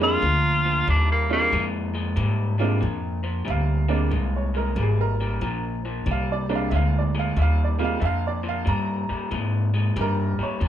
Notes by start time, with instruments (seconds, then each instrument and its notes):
Already playing: upright bass F2
0.00 clean electric guitar A#2 G3, upright piano G#3 A#3 C4 D4 G#4, tenor saxophone F4
0.22 upright bass D2, clean electric guitar A#2 F3
0.65 clean electric guitar A#2 F3
0.87 upright bass D#2, clean electric guitar A#2 G3, tenor saxophone D4
1.12 tenor saxophone A#3
1.29 clean electric guitar A#2 G3, upright piano G#3 A#3 C4 D4 F4, tenor saxophone A#3
1.52 upright bass F2, clean electric guitar A#2 G#3
1.94 clean electric guitar A#2 G#3
2.16 upright bass G#2, clean electric guitar A#2 G3
2.58 clean electric guitar A#2 G3, upright piano G#3 A#3 C4 D4 F4
2.81 upright bass F2, clean electric guitar A#2 F3
3.23 clean electric guitar A#2 F3
3.45 upright bass D2, clean electric guitar A#2 G3, upright piano E5
3.50 upright piano F5
3.88 clean electric guitar A#2 G3, upright piano G#3 A#3 C4 D4
4.11 upright bass C2, clean electric guitar A#2 G#3
4.36 upright piano C#5
4.54 clean electric guitar A#2 G#3, upright piano A#4
4.76 upright bass G#1, clean electric guitar A#2 G3
4.81 upright piano G#4
5.01 upright piano A#4
5.21 clean electric guitar A#2 G3
5.41 upright bass A#1, clean electric guitar A#2 F3
5.85 clean electric guitar A#2 F3
6.06 upright bass C2, clean electric guitar A#2 G3
6.11 upright piano F5
6.32 upright piano D5
6.49 clean electric guitar A#2 G3, upright piano G#3 A#3 C4 D4
6.55 upright piano F5
6.70 upright bass D2, clean electric guitar A#2 G#3, upright piano E5
6.75 upright piano F5
6.98 upright piano D5
7.15 clean electric guitar A#2 G#3
7.19 upright piano F5
7.36 upright bass D#2, clean electric guitar A#2 G3, upright piano E5
7.42 upright piano F5
7.64 upright piano D5
7.78 clean electric guitar A#2 G3, upright piano G#3 A#3 C4 F4
7.84 upright piano F5
8.00 upright bass F2, clean electric guitar A#2 F3, upright piano E5
8.05 upright piano F5
8.27 upright piano D5
8.43 clean electric guitar A#2 F3
8.49 upright piano F5
8.65 upright bass G2, clean electric guitar A#2 G3, upright piano A#5
9.09 clean electric guitar A#2 G3, muted upright bass stroke
9.31 upright bass G#2, clean electric guitar A#2 G#3
9.74 clean electric guitar A#2 G#3
9.96 upright bass G2, clean electric guitar A#2 G3
10.01 upright piano A#4
10.39 clean electric guitar A#2 G3, muted upright bass stroke
10.43 upright piano C#5
10.60 upright bass F2, clean electric guitar A#2 F3